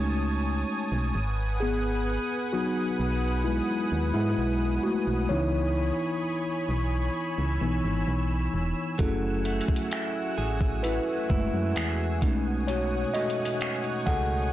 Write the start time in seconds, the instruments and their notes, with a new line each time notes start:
Already playing: fm bass C#2, tine electric piano G#3 A3 C#4 D#4 F#4 C#5, analog synth pad C#5 G#5 A5 D#6
0.92 fm bass B1
1.14 fm bass G#1, analog synth pad B4 F#5
1.60 tine electric piano B3 G#4
2.53 tine electric piano F#3 B3 D#4 F#4
3.00 fm bass B1
3.44 tine electric piano G#3 E4
3.92 fm bass D#2
4.14 fm bass G#2, tine electric piano G#3 E4
4.38 fm bass B1
4.83 tine electric piano A3 F#4
5.07 fm bass B1
5.29 fm bass C#2, tine electric piano E3 B3 D#4 E4 C#5, analog synth pad C#5 G#5 B5
6.69 fm bass B1
7.15 analog synth pad E6
7.38 fm bass C#2
7.61 fm bass B1, tine electric piano E3 B3 D#4
7.84 fm bass G#1
8.08 fm bass B1
8.54 fm bass E1
8.99 fm bass F#1, clean electric guitar F#3, tine electric piano A3 C#4 E4 G#4 A4, analog synth pad F#4 F#5 G#5, kick, closed hi-hat
9.45 clean electric guitar A3, closed hi-hat
9.61 closed hi-hat
9.68 kick
9.76 closed hi-hat
9.91 clean electric guitar E4, finger snap, closed hi-hat
10.38 fm bass A1, clean electric guitar G#4
10.61 kick
10.83 clean electric guitar A3, tine electric piano E4 B4, closed hi-hat
11.30 fm bass F#1, tine electric piano G#3 A3 E4, clean electric guitar E4, kick
11.54 fm bass F#2
11.76 fm bass E2, clean electric guitar G#4, finger snap, closed hi-hat
12.22 fm bass B1, clean electric guitar B2, tine electric piano G#3 A3 C#4 D#4, analog synth pad C#5 F#5 D#6, kick, closed hi-hat
12.68 clean electric guitar B2, tine electric piano F#4 C#5, closed hi-hat
13.14 clean electric guitar A3, tine electric piano F#4 D#5, closed hi-hat
13.30 closed hi-hat
13.45 closed hi-hat
13.61 clean electric guitar C#4, finger snap, closed hi-hat
13.84 clean electric guitar D#4
14.06 fm bass C#2, clean electric guitar G#4, tine electric piano A4 F#5, kick